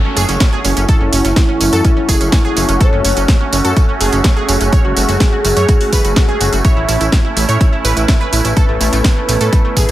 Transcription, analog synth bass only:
0.17 0.26 F#1 medium
0.29 0.38 F#1 medium
0.65 0.74 F#1 loud
0.77 0.86 F#1 medium
1.01 1.10 F#1 medium
1.13 1.22 F#1 loud
1.25 1.33 F#1 medium
1.61 1.70 F#1 loud
1.73 1.82 F#2 medium
2.09 2.17 F#1 loud
2.21 2.30 F#1 medium
2.57 2.66 F#1 loud
2.69 2.77 F#1 medium
2.93 3.02 F#1 medium
3.05 3.13 F#1 loud
3.17 3.25 F#1 medium
3.53 3.62 F#1 medium
3.65 3.74 F#2 medium
4.01 4.10 F#1 medium
4.13 4.21 F#1 medium
4.49 4.58 F#1 loud
4.61 4.70 F#1 medium
4.85 4.94 F#1 medium
4.97 5.06 F#1 medium
5.09 5.17 F#1 medium
5.45 5.54 F#1 medium
5.57 5.65 F#2 medium
5.93 6.02 F#1 medium
6.05 6.13 F#1 medium
6.41 6.50 F#1 loud
6.53 6.61 F#1 medium
6.77 6.86 A1 medium
6.89 6.97 A1 loud
7.01 7.09 A1 medium
7.37 7.46 A1 loud
7.49 7.58 A2 medium
7.85 7.94 A1 loud
7.97 8.05 A1 medium
8.33 8.42 A1 medium
8.45 8.54 A1 medium
8.69 8.78 A1 medium
8.81 8.90 A1 loud
8.93 9.02 A1 medium
9.29 9.38 A1 medium
9.41 9.50 A2 medium
9.77 9.86 A1 loud

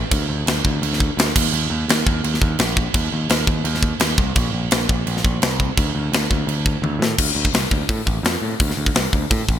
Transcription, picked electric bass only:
0.11 0.25 D2 medium
0.29 0.43 D2 medium
0.46 0.60 D2 loud
0.65 0.78 D2 medium
0.82 1.09 D2 loud
1.17 1.31 D2 loud
1.36 1.49 D#2 medium
1.52 1.66 D#2 loud
1.70 1.84 D#2 medium
1.88 2.02 D#2 medium
2.06 2.20 D#2 medium
2.24 2.37 D#2 loud
2.42 2.55 D#2 medium
2.59 2.86 A#1 loud
2.94 3.08 D#2 loud
3.13 3.26 D#2 loud
3.30 3.43 D#2 medium
3.47 3.61 D#2 medium
3.64 3.92 D#2 loud
4.00 4.14 D#2 medium
4.18 4.32 C2 medium
4.36 4.49 A#1 loud
4.53 4.67 A#1 medium
4.72 4.85 A#1 loud
4.89 5.03 A#1 loud
5.07 5.20 A#1 loud
5.24 5.38 A#1 medium
5.42 5.69 C2 loud
5.78 5.91 D2 loud
5.95 6.09 D2 loud
6.12 6.26 D2 loud
6.30 6.44 D2 medium
6.47 6.75 D2 loud
6.82 6.96 D2 medium
6.99 7.14 A2 loud
7.18 7.30 D2 loud
7.35 7.47 D2 medium
7.53 7.65 C2 loud
7.71 7.83 D2 medium
7.89 8.00 A2 loud
8.06 8.18 A1 loud
8.23 8.35 F2 loud
8.42 8.53 A2 medium
8.60 8.72 D2 loud
8.77 8.89 D2 loud
8.95 9.06 C2 medium
9.13 9.24 D2 medium
9.31 9.42 A2 medium
9.49 9.59 A1 medium

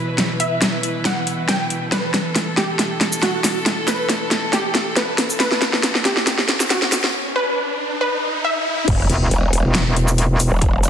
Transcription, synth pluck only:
0.00 0.32 B4 medium
0.40 0.97 E5 medium
1.05 1.35 F#5 medium
1.48 1.79 G5 medium
1.92 2.49 B4 loud
2.57 3.15 G4 medium
3.23 3.80 F#4 medium
3.88 4.45 B4 medium
4.53 4.83 G4 medium
4.97 5.27 B4 medium
5.40 5.97 B4 loud
6.05 6.62 G4 loud
6.70 7.28 F#4 medium
7.36 7.93 B4 loud
8.01 8.31 B4 medium
8.44 8.74 E5 medium

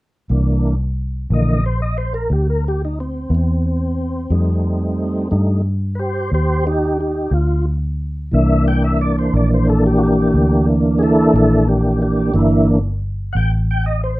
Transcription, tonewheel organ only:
0.29 0.74 E3 soft
0.29 0.74 A#3 soft
0.29 0.75 D4 soft
1.31 1.62 D3 soft
1.31 1.61 E3 soft
1.31 1.61 A#3 soft
1.31 1.64 D#5 medium
1.66 1.81 C5 medium
1.82 1.97 D#5 medium
1.98 2.13 C5 medium
2.14 2.30 A#4 medium
2.33 2.47 G4 medium
2.50 2.64 A#4 medium
2.68 2.82 G4 medium
2.85 2.99 D#4 medium
3.00 3.32 C4 medium
3.30 3.33 B3 medium
3.35 5.30 C4 medium
4.30 5.27 G3 soft
4.30 5.28 A3 soft
4.30 5.28 D#4 medium
5.31 5.62 G3 soft
5.31 5.62 A3 soft
5.31 5.62 D#4 soft
5.95 5.99 B4 medium
5.99 6.30 G4 medium
5.99 6.32 C5 medium
6.34 6.64 G4 medium
6.34 6.66 C5 medium
6.67 6.97 D#4 medium
6.67 6.99 G4 medium
7.00 7.31 D#4 medium
7.00 7.32 G4 medium
7.33 7.65 F4 medium
8.31 12.30 E3 medium
8.31 12.31 A#3 soft
8.31 11.68 D4 medium
8.31 8.66 E5 medium
8.68 8.83 G5 medium
8.84 8.99 E5 medium
9.01 9.16 D5 medium
9.19 9.33 C5 medium
9.37 9.51 D5 medium
9.54 9.68 C5 medium
9.70 9.84 A4 medium
9.86 10.01 G4 medium
9.98 10.02 F#4 medium
10.03 10.67 G4 medium
10.99 11.02 G#4 medium
11.03 11.33 E4 medium
11.03 11.34 A4 medium
11.36 11.66 E4 medium
11.36 11.68 A4 medium
11.69 11.99 D4 medium
11.69 12.01 G4 medium
12.01 12.32 D4 medium
12.01 12.34 G4 medium
12.34 12.79 E3 soft
12.34 12.79 A#3 soft
12.34 12.79 D4 medium
12.34 12.68 E4 medium
13.33 13.36 F#5 medium
13.33 13.51 G5 medium
13.71 13.85 G5 medium
13.86 14.01 D#5 medium
14.04 14.18 C5 medium

